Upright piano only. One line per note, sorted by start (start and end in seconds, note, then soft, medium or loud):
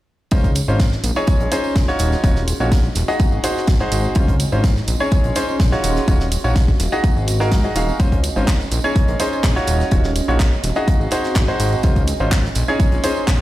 0.32 0.48 C#4 medium
0.32 0.48 D#4 medium
0.32 0.48 F4 medium
0.32 0.48 C5 medium
0.68 0.84 C#4 medium
0.68 0.84 D#4 medium
0.68 0.84 F4 medium
0.68 0.84 C5 medium
1.16 1.49 C#4 medium
1.16 1.49 D#4 medium
1.16 1.49 G#4 medium
1.16 1.49 C#5 medium
1.52 1.77 C#4 medium
1.52 1.77 D#4 medium
1.52 1.77 G#4 medium
1.52 1.77 C5 medium
1.88 2.21 D#4 medium
1.88 2.21 F4 medium
1.88 2.21 F#4 medium
1.88 2.21 C#5 loud
2.24 2.40 D#4 medium
2.24 2.40 F4 medium
2.24 2.40 F#4 medium
2.24 2.40 C#5 medium
2.60 2.76 D#4 medium
2.60 2.76 F4 medium
2.60 2.76 F#4 medium
2.60 2.76 C#5 medium
3.08 3.41 D#4 medium
3.08 3.41 F#4 medium
3.08 3.41 G#4 medium
3.08 3.41 D#5 loud
3.44 3.69 D#4 medium
3.44 3.69 F#4 medium
3.44 3.69 G#4 medium
3.44 3.69 C5 medium
3.80 4.13 D#4 medium
3.80 4.13 F#4 medium
3.80 4.13 G#4 medium
3.80 4.13 C5 loud
4.16 4.32 C#4 medium
4.16 4.32 D#4 medium
4.16 4.32 F4 medium
4.16 4.32 C5 medium
4.52 4.68 C#4 medium
4.52 4.68 D#4 medium
4.52 4.68 F4 medium
4.52 4.68 C5 medium
5.00 5.33 C#4 medium
5.00 5.33 D#4 medium
5.00 5.33 G#4 medium
5.00 5.33 C#5 loud
5.36 5.61 C#4 medium
5.36 5.61 D#4 medium
5.36 5.61 G#4 medium
5.36 5.61 C5 loud
5.72 6.05 D#4 medium
5.72 6.05 F4 medium
5.72 6.05 F#4 medium
5.72 6.05 C#5 loud
6.08 6.24 D#4 medium
6.08 6.24 F4 medium
6.08 6.24 F#4 medium
6.08 6.24 C#5 medium
6.44 6.60 D#4 medium
6.44 6.60 F4 medium
6.44 6.60 F#4 medium
6.44 6.60 C#5 medium
6.92 7.25 D#4 medium
6.92 7.25 F#4 medium
6.92 7.25 G#4 medium
6.92 7.25 D#5 loud
7.40 7.61 D#4 medium
7.40 7.61 F#4 medium
7.40 7.61 G#4 medium
7.40 7.61 A#4 loud
7.64 7.74 D#4 medium
7.64 7.74 F#4 medium
7.64 7.74 G#4 medium
7.64 7.74 D#5 medium
7.76 7.97 D#4 medium
7.76 7.97 F#4 medium
7.76 7.97 G#4 medium
7.76 7.97 F5 medium
8.00 8.16 C#4 medium
8.00 8.16 D#4 medium
8.00 8.16 F4 medium
8.00 8.16 C5 medium
8.36 8.52 C#4 medium
8.36 8.52 D#4 medium
8.36 8.52 F4 medium
8.36 8.52 C5 medium
8.84 9.17 C#4 medium
8.84 9.17 D#4 medium
8.84 9.17 G#4 medium
8.84 9.17 C#5 loud
9.20 9.45 C#4 medium
9.20 9.45 D#4 medium
9.20 9.45 G#4 medium
9.20 9.45 C5 medium
9.56 9.89 D#4 medium
9.56 9.89 F4 medium
9.56 9.89 F#4 medium
9.56 9.89 C#5 loud
9.92 10.08 D#4 medium
9.92 10.08 F4 medium
9.92 10.08 F#4 medium
9.92 10.08 C#5 medium
10.28 10.44 D#4 medium
10.28 10.44 F4 medium
10.28 10.44 F#4 medium
10.28 10.44 C#5 medium
10.76 11.09 D#4 medium
10.76 11.09 F#4 medium
10.76 11.09 G#4 medium
10.76 11.09 D#5 loud
11.12 11.37 D#4 medium
11.12 11.37 F#4 medium
11.12 11.37 G#4 medium
11.12 11.37 C5 medium
11.48 11.81 D#4 medium
11.48 11.81 F#4 medium
11.48 11.81 G#4 medium
11.48 11.81 C5 loud
11.84 12.00 C#4 medium
11.84 12.00 D#4 medium
11.84 12.00 F4 medium
11.84 12.00 C5 medium
12.20 12.36 C#4 medium
12.20 12.36 D#4 medium
12.20 12.36 F4 medium
12.20 12.36 C5 medium
12.68 13.01 C#4 medium
12.68 13.01 D#4 medium
12.68 13.01 G#4 medium
12.68 13.01 C#5 loud
13.04 13.29 C#4 medium
13.04 13.29 D#4 medium
13.04 13.29 G#4 medium
13.04 13.29 C5 medium